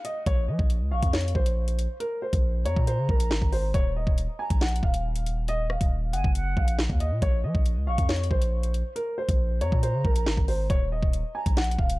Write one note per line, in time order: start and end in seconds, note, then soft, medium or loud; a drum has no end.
0.05 0.22 D#5 medium
0.05 closed hi-hat medium
0.26 0.50 A#1 loud
0.26 0.44 C#5 loud
0.26 kick loud
0.26 closed hi-hat medium
0.48 0.58 F3 loud
0.48 0.89 D#5 medium
0.59 0.82 A#1 loud
0.59 kick loud
0.70 closed hi-hat medium
0.81 0.93 C#2 loud
0.91 1.02 A#1 loud
0.91 1.09 F5 medium
0.91 1.12 C#6 medium
1.03 1.34 F2 loud
1.03 kick loud
1.03 closed hi-hat medium
1.13 1.31 C#5 medium
1.13 snare loud
1.13 closed hi-hat soft
1.21 closed hi-hat medium
1.28 closed hi-hat medium
1.35 1.87 A#1 loud
1.35 1.96 C5 medium
1.35 kick medium
1.46 closed hi-hat loud
1.68 closed hi-hat medium
1.79 closed hi-hat medium
2.00 2.17 A#4 medium
2.00 closed hi-hat medium
2.22 2.63 C5 medium
2.33 2.67 A#1 loud
2.33 kick loud
2.33 closed hi-hat medium
2.65 2.76 F2 loud
2.65 2.83 C#5 loud
2.65 3.70 A#5 medium
2.65 closed hi-hat medium
2.76 3.00 A#2 loud
2.76 kick loud
2.87 3.04 C5 medium
2.87 closed hi-hat medium
2.98 3.09 C#3 loud
3.09 3.32 A#1 loud
3.09 3.50 A#4 medium
3.09 kick medium
3.20 closed hi-hat loud
3.31 3.41 G#1 loud
3.31 snare loud
3.42 3.73 G#1 loud
3.42 kick medium
3.52 3.70 C5 medium
3.52 open hi-hat medium
3.74 4.06 D#1 loud
3.74 3.91 C#5 loud
3.74 kick loud
3.74 closed hi-hat medium
3.96 4.37 D#5 medium
4.07 4.28 D#1 loud
4.07 kick loud
4.18 closed hi-hat medium
4.39 4.56 G#5 medium
4.39 4.60 A#5 medium
4.50 4.82 A#1 loud
4.50 kick loud
4.50 closed hi-hat medium
4.61 4.79 F#5 medium
4.61 snare loud
4.61 closed hi-hat soft
4.68 closed hi-hat medium
4.76 closed hi-hat medium
4.83 5.77 D#1 loud
4.83 5.44 F5 medium
4.83 kick medium
4.94 closed hi-hat loud
5.16 closed hi-hat medium
5.26 closed hi-hat medium
5.48 5.65 D#5 loud
5.48 closed hi-hat medium
5.70 6.11 F5 medium
5.70 cross-stick loud
5.81 6.15 D#1 loud
5.81 kick loud
5.81 closed hi-hat medium
6.13 6.24 F#1 loud
6.13 6.30 F#5 medium
6.13 6.34 G#5 medium
6.13 closed hi-hat medium
6.24 6.56 F#1 loud
6.24 kick loud
6.35 6.76 F#5 loud
6.35 closed hi-hat medium
6.57 6.88 A#1 loud
6.57 6.98 F5 medium
6.57 kick medium
6.68 closed hi-hat loud
6.79 snare loud
6.90 7.13 D#2 loud
6.90 kick medium
7.00 7.17 D#5 medium
7.00 closed hi-hat medium
7.11 7.22 A#2 loud
7.22 7.45 A#1 loud
7.22 7.39 C#5 loud
7.22 kick loud
7.22 closed hi-hat medium
7.44 7.54 F3 loud
7.44 7.85 D#5 medium
7.55 7.78 A#1 loud
7.55 kick loud
7.66 closed hi-hat medium
7.76 7.89 C#2 loud
7.87 7.98 A#1 loud
7.87 8.04 F5 medium
7.87 8.08 C#6 medium
7.98 8.30 F2 loud
7.98 kick loud
7.98 closed hi-hat medium
8.09 8.26 C#5 medium
8.09 snare loud
8.09 closed hi-hat soft
8.16 closed hi-hat medium
8.24 closed hi-hat medium
8.31 8.83 A#1 loud
8.31 8.92 C5 medium
8.31 kick medium
8.42 closed hi-hat loud
8.63 closed hi-hat medium
8.74 closed hi-hat medium
8.96 9.13 A#4 medium
8.96 closed hi-hat medium
9.18 9.59 C5 medium
9.29 9.63 A#1 loud
9.29 kick loud
9.29 closed hi-hat medium
9.61 9.72 F2 loud
9.61 9.78 C#5 medium
9.61 10.66 A#5 medium
9.61 closed hi-hat medium
9.72 9.95 A#2 loud
9.72 kick loud
9.83 10.00 C5 medium
9.83 closed hi-hat medium
9.94 10.04 C#3 loud
10.05 10.28 A#1 loud
10.05 10.46 A#4 medium
10.05 kick medium
10.16 closed hi-hat medium
10.26 10.37 G#1 loud
10.26 snare loud
10.37 10.69 G#1 loud
10.37 kick medium
10.48 10.65 C5 medium
10.48 open hi-hat medium
10.70 11.01 D#1 loud
10.70 10.87 C#5 loud
10.70 kick loud
10.70 closed hi-hat medium
10.92 11.33 D#5 medium
11.03 11.23 D#1 loud
11.03 kick loud
11.13 closed hi-hat medium
11.35 11.52 G#5 medium
11.35 11.56 A#5 medium
11.46 11.77 A#1 loud
11.46 kick loud
11.46 closed hi-hat medium
11.57 11.74 F#5 medium
11.57 snare loud
11.57 closed hi-hat medium
11.64 closed hi-hat medium
11.71 closed hi-hat medium
11.79 11.99 D#1 loud
11.79 11.99 F5 medium
11.79 kick medium
11.90 closed hi-hat loud